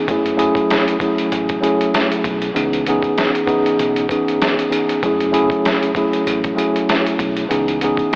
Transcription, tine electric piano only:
0.09 0.35 F#3 medium
0.09 0.36 A3 medium
0.09 0.37 C#4 medium
0.09 0.37 E4 medium
0.09 0.38 G#4 loud
0.37 0.95 F#3 medium
0.37 0.96 A3 medium
0.37 0.96 C#4 medium
0.37 0.96 E4 medium
0.37 0.97 G#4 loud
1.00 1.58 F#3 medium
1.00 1.58 A3 medium
1.00 1.59 C#4 medium
1.00 1.59 E4 medium
1.00 1.59 G#4 loud
1.61 2.48 F#3 loud
1.61 2.48 A3 medium
1.61 2.49 C#4 medium
1.61 2.49 E4 medium
1.61 2.49 G#4 loud
2.54 2.84 E3 loud
2.54 2.84 B3 medium
2.54 2.84 C#4 medium
2.54 2.84 D#4 medium
2.54 2.85 G#4 loud
2.87 3.44 E3 medium
2.87 3.45 B3 medium
2.87 3.45 C#4 medium
2.87 3.45 D#4 medium
2.87 3.46 G#4 loud
3.46 4.05 E3 loud
3.46 4.05 B3 medium
3.46 4.05 C#4 medium
3.46 4.06 D#4 medium
3.46 4.06 G#4 loud
4.10 4.67 E3 medium
4.10 4.68 B3 medium
4.10 4.68 C#4 medium
4.10 4.68 D#4 medium
4.10 4.69 G#4 loud
4.69 4.99 E3 medium
4.69 5.00 B3 medium
4.69 5.00 C#4 medium
4.69 5.00 D#4 medium
4.69 5.01 G#4 medium
5.03 5.30 F#3 medium
5.03 5.31 A3 medium
5.03 5.32 C#4 medium
5.03 5.32 E4 medium
5.03 5.33 G#4 loud
5.32 5.90 F#3 loud
5.32 5.91 A3 medium
5.32 5.91 C#4 loud
5.32 5.91 E4 medium
5.32 5.92 G#4 loud
5.95 6.53 F#3 medium
5.95 6.53 A3 medium
5.95 6.54 C#4 medium
5.95 6.54 E4 loud
5.95 6.54 G#4 loud
6.55 7.43 F#3 loud
6.55 7.43 A3 medium
6.55 7.43 C#4 medium
6.55 7.44 E4 medium
6.55 7.44 G#4 loud
7.48 7.78 E3 loud
7.48 7.78 B3 medium
7.48 7.79 C#4 medium
7.48 7.79 D#4 medium
7.48 7.79 G#4 loud
7.82 8.15 E3 medium
7.82 8.15 B3 medium
7.82 8.15 C#4 medium
7.82 8.15 D#4 medium
7.82 8.15 G#4 loud

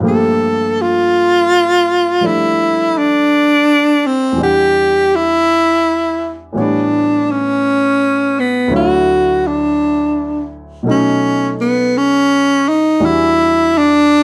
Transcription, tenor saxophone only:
0.08 0.83 A4 medium
0.82 2.28 F4 medium
2.27 3.00 E4 medium
2.98 4.08 D4 medium
4.07 4.40 C4 medium
4.43 5.17 G4 medium
5.15 6.39 E4 medium
6.60 7.33 D4 medium
7.31 8.41 C#4 medium
8.40 8.73 B3 medium
8.76 9.49 F#4 medium
9.47 10.51 D4 medium
10.91 11.55 C#4 medium
11.61 11.99 B3 medium
11.98 12.70 C#4 medium
12.69 13.07 D#4 medium
13.06 13.79 E4 medium
13.78 14.23 D4 medium

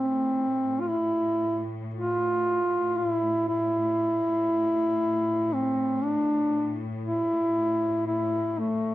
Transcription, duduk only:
0.00 0.82 C4 medium
0.80 0.90 F4 medium
0.89 1.67 E4 medium
1.94 2.99 F4 medium
2.98 3.48 E4 medium
3.49 5.55 E4 medium
5.53 6.04 C4 medium
6.03 6.78 D4 medium
7.06 8.04 E4 medium
8.07 8.61 E4 medium
8.59 8.95 A3 medium

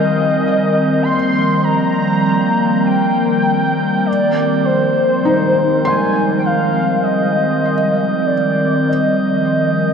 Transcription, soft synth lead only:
0.00 1.04 D#5 loud
1.03 1.65 C6 loud
1.64 2.88 A#5 loud
2.86 4.08 G5 loud
4.06 4.67 D5 loud
4.65 5.88 C5 loud
5.87 6.38 G#5 loud
6.38 6.47 G5 medium
6.46 7.05 F5 loud
7.04 8.27 D#5 medium
8.26 8.89 D5 loud
8.88 9.94 D#5 loud

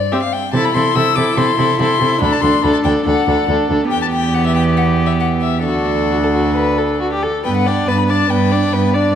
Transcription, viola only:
0.13 0.21 C4 soft
0.55 0.75 E4 soft
0.75 0.95 E4 soft
0.96 1.16 E4 soft
1.17 1.37 E4 soft
1.37 1.58 E4 soft
1.58 1.78 E4 soft
1.79 1.99 E4 soft
2.00 2.20 E4 soft
2.21 2.41 D4 soft
2.43 2.63 D4 soft
2.63 2.84 D4 soft
2.84 3.05 D4 soft
3.06 3.26 D4 soft
3.28 3.48 D4 soft
3.48 3.69 D4 soft
3.70 3.91 D4 soft
3.92 5.62 B3 soft
5.67 7.22 D4 soft
7.46 7.68 B3 soft
7.67 7.90 D4 soft
7.89 8.12 B3 soft
8.10 8.31 D4 soft
8.32 8.55 B3 soft
8.53 8.76 D4 soft
8.75 8.97 B3 soft
8.95 9.15 D4 soft

